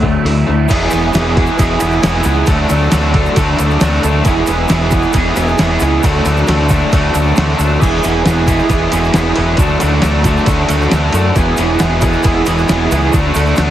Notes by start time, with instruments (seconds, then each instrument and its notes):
Already playing: fingered electric bass D2, overdriven electric guitar F#3
0.03 overdriven electric guitar D3 A3, kick
0.23 fingered electric bass D2, overdriven electric guitar D3 A3 E4, open hi-hat
0.47 fingered electric bass D2, overdriven electric guitar D3 A3
0.68 fingered electric bass E1, overdriven electric guitar E3 G#3 B3 E4 G#4, kick, crash, ride, shaker
0.90 fingered electric bass E1, overdriven electric guitar E3 G#3 B3 E4 G#4, ride, shaker
1.12 fingered electric bass E1, overdriven electric guitar E3 G#3 B3 E4 G#4, snare, ride, shaker
1.35 overdriven electric guitar E3 G#3 B3 E4 G#4, kick, ride
1.46 shaker
1.58 fingered electric bass E1, overdriven electric guitar E3 G#3 B3 E4 G#4, kick, ride, shaker
1.79 fingered electric bass E1, overdriven electric guitar E3 G#3 B3 E4 G#4, ride, shaker
1.91 shaker
2.03 fingered electric bass E1, overdriven electric guitar E3 G#3 B3 E4 G#4, snare, ride, shaker
2.23 fingered electric bass C#2, overdriven electric guitar E3 G#3 B3 E4 G#4, ride, shaker
2.46 fingered electric bass D2, overdriven electric guitar D3 F#3 A3 D4 F#4 A4, kick, ride, shaker
2.68 fingered electric bass D2, overdriven electric guitar D3 F#3 A3 D4 F#4 A4, ride, shaker
2.90 fingered electric bass D2, overdriven electric guitar D3 F#3 A3 D4 F#4 A4, snare, ride, shaker
3.13 overdriven electric guitar D3 F#3 A3 D4 F#4 A4, kick, ride
3.26 shaker
3.36 fingered electric bass D2, overdriven electric guitar D3 F#3 A3 D4 F#4 A4, kick, ride, shaker
3.57 fingered electric bass D2, overdriven electric guitar D3 F#3 A3 D4 F#4 A4, ride, shaker
3.70 shaker
3.81 fingered electric bass D2, overdriven electric guitar D3 F#3 A3 D4 F#4 A4, snare, ride, shaker
4.03 fingered electric bass D2, overdriven electric guitar D3 F#3 A3 D4 F#4 A4, ride, shaker
4.25 fingered electric bass E1, overdriven electric guitar E3 G#3 B3 E4 G#4, kick, ride, shaker
4.47 fingered electric bass E1, overdriven electric guitar E3 G#3 B3 E4, ride, shaker
4.51 overdriven electric guitar G#4
4.68 fingered electric bass E1, overdriven electric guitar E3 G#3 B3 E4 G#4, snare, ride, shaker
4.91 overdriven electric guitar E3 G#3 B3 E4 G#4, kick, ride, shaker
5.02 shaker
5.12 fingered electric bass E1, overdriven electric guitar E3 G#3 B3 E4, kick, ride, shaker
5.16 overdriven electric guitar G#4
5.34 fingered electric bass E1, overdriven electric guitar E3 G#3 B3 E4 G#4, ride, shaker
5.48 shaker
5.58 fingered electric bass E1, overdriven electric guitar E3 G#3 B3 E4 G#4, snare, ride, shaker
5.80 fingered electric bass C#2, overdriven electric guitar E3 G#3 B3 E4 G#4, ride, shaker
6.03 fingered electric bass D2, overdriven electric guitar D3 F#3 A3 D4 F#4 A4, kick, ride, shaker
6.24 fingered electric bass D2, overdriven electric guitar D3 F#3 A3 D4 F#4 A4, ride, shaker
6.37 shaker
6.47 fingered electric bass D2, overdriven electric guitar D3 F#3 A3 D4 F#4 A4, snare, ride, shaker
6.69 overdriven electric guitar D3 F#3 A3 D4 F#4 A4, kick, ride, shaker
6.92 fingered electric bass D2, overdriven electric guitar D3 F#3 A3 D4 F#4 A4, kick, ride, shaker
7.14 fingered electric bass D2, overdriven electric guitar D3 F#3 A3 D4 F#4 A4, ride, shaker
7.34 fingered electric bass D2, overdriven electric guitar D3 F#3 A3 D4 F#4 A4, snare, ride, shaker
7.57 fingered electric bass D2, overdriven electric guitar D3 F#3 A3 D4 F#4 A4, ride, shaker
7.80 fingered electric bass E1, overdriven electric guitar E3 G#3 B3 E4 G#4, kick, crash, shaker
8.02 fingered electric bass E1, overdriven electric guitar E3 G#3 B3 E4 G#4, ride, shaker
8.25 fingered electric bass E1, overdriven electric guitar E3 G#3 B3 E4 G#4, snare, ride, shaker
8.46 overdriven electric guitar E3 G#3 B3 E4 G#4, kick, ride, shaker
8.59 shaker
8.69 fingered electric bass E1, overdriven electric guitar E3 G#3 B3 E4 G#4, kick, ride, shaker
8.92 fingered electric bass E1, overdriven electric guitar E3 G#3 B3 E4 G#4, ride, shaker
9.04 shaker
9.13 fingered electric bass E1, overdriven electric guitar E3 G#3 B3 E4 G#4, snare, ride, shaker
9.35 fingered electric bass E1, overdriven electric guitar E3 G#3 B3 E4 G#4, ride
9.57 fingered electric bass D2, overdriven electric guitar D3 F#3 A3 D4 F#4 A4, kick, ride, shaker
9.79 fingered electric bass D2, overdriven electric guitar D3 F#3 A3 D4 F#4 A4, ride, shaker
10.01 fingered electric bass D2, overdriven electric guitar D3 F#3 A3 D4 F#4 A4, snare, ride, shaker
10.23 overdriven electric guitar D3 F#3 A3 D4 F#4 A4, kick, ride, shaker
10.37 shaker
10.45 fingered electric bass D2, overdriven electric guitar D3 F#3 A3 D4 F#4 A4, kick, ride, shaker
10.67 fingered electric bass D2, overdriven electric guitar D3 F#3 A3 D4 F#4 A4, ride, shaker
10.82 shaker
10.90 fingered electric bass D2, overdriven electric guitar D3 F#3 A3 D4 F#4 A4, snare, ride, shaker
11.12 fingered electric bass F#2, overdriven electric guitar D3 F#3 A3 D4 F#4 A4, ride, shaker
11.35 fingered electric bass E1, overdriven electric guitar E3 G#3 B3 E4 G#4, kick, ride, shaker
11.57 fingered electric bass E1, overdriven electric guitar E3 G#3 B3 E4 G#4, ride, shaker
11.78 fingered electric bass E1, overdriven electric guitar E3 G#3 B3 E4 G#4, snare, ride, shaker
12.01 overdriven electric guitar E3 G#3 B3 E4 G#4, kick, ride, shaker
12.12 shaker
12.23 fingered electric bass E1, overdriven electric guitar E3 G#3 B3 E4 G#4, kick, ride, shaker
12.45 fingered electric bass E1, overdriven electric guitar E3 G#3 B3 E4 G#4, ride, shaker
12.58 shaker
12.67 fingered electric bass E1, overdriven electric guitar E3 G#3 B3 E4 G#4, snare, ride, shaker
12.88 fingered electric bass C#2, overdriven electric guitar E3 G#3 B3 E4, ride, shaker
12.93 overdriven electric guitar G#4
13.10 overdriven electric guitar D3 A3 D4 F#4, kick, shaker
13.14 fingered electric bass D2, ride
13.32 fingered electric bass D2, overdriven electric guitar D3 A3 D4 F#4, shaker
13.36 ride
13.46 shaker
13.55 fingered electric bass D2, overdriven electric guitar D3 A3 D4 F#4, snare, ride, shaker